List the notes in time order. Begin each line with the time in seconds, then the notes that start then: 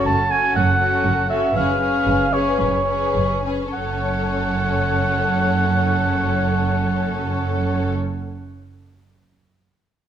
Already playing: C#4 F#4 A4
0.06 F#1 F#2 A5
0.30 C#4 F#4 A4 G#5
0.55 F#1 F#2 F#5
0.80 C#4 F#4 A4
1.04 F#1 F#2
1.29 C#4 F#4 A4 E5
1.54 F#1 F#2 C#4 G#4 B4 F5
1.80 C#4 G#4 B4
2.05 F#1 F#2
2.32 C#4 G#4 B4 C#5
2.59 F#1 F#2 C#5
2.86 C#4 G#4 B4
3.15 F#1 F#2
3.45 C#4 G#4 B4
3.73 F#1 F#2 C#4 A4 C#5 F#5